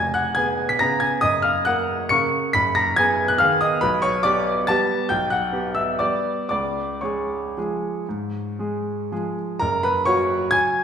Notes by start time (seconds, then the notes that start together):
Already playing: F1 G#5 G#6
0.14 F#5 F#6
0.35 B3 G#4 G#5 G#6
0.69 B6
0.79 C#3 B3 G#4 A#5 A#6
1.00 G#5 G#6
1.21 F#1 D#5 D#6
1.42 F5 F6
1.65 A#3 A#4 F#5 F#6
2.09 C#3 A#3 A#4 C#6 C#7
2.53 F#1 B5 B6
2.75 A#5 A#6
2.96 B3 G#4 G#5 G#6
3.28 F#6
3.38 D#3 B3 G#4 F5 F6
3.61 D#5 D#6
3.81 B1 B4 B5
4.02 C#5 C#6
4.23 B3 G4 D5 D6
4.67 G3 B3 G4 A5 A6
5.09 B1 G5 G6
5.30 F#5 F#6
5.53 B3 G4
5.75 E5 E6
5.99 G3 B3 G4 D5 D6
6.49 C#2 D5 D6
7.01 G#3 G#4 C#5 C#6
7.57 F3 G#3 G#4
8.09 G#2
8.59 G#3 G#4
9.12 F3 G#3 G#4
9.60 F#1 A#4 A#5
9.83 B4 B5
10.05 F#3 A#3 F#4 C#5 C#6
10.51 G#5 G#6